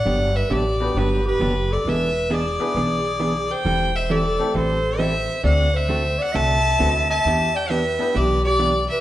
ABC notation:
X:1
M:4/4
L:1/8
Q:"Swing" 1/4=134
K:Em
V:1 name="Fiddle"
f e d2 B B2 d | e2 d4- d g- | g e d2 c2 e2 | f e2 f a3 a- |
a g e2 d d2 e |]
V:2 name="Clarinet"
d B G2 G G2 A | B2 ^G4- G c- | c c A2 A2 c2 | d c2 d e3 e- |
e d B2 G G2 B |]
V:3 name="Upright piano"
z3 [B,DFGB]3 z2 | z3 [B,DE^GB] z4 | z3 [A,CEGA] z4 | z6 [CDEFB] z |
z3 [B,DEGB] z4 |]
V:4 name="Hollow-body jazz guitar"
[D,F,B,DG] z [D,F,B,DG] z [D,F,B,DG] z [D,F,B,DG] z | [E,B,D^G] z [E,B,DG] z [E,B,DG] z [E,B,DG] z | [E,G,CEA] z [E,G,CEA] z [E,G,CEA] z [E,G,CEA] z | [D,A,CFA] z [D,A,CFA] z [D,A,CFA] z [D,A,CFA] z |
[E,B,DG] z [E,B,DG] z [E,B,DG] z [E,B,DG] z |]
V:5 name="Upright bass" clef=bass
G,,,2 A,,,2 G,,,2 F,,,2 | E,,,4 B,,,4 | E,,,4 A,,,4 | D,,4 C,,2 D,,2 |
E,,4 B,,,4 |]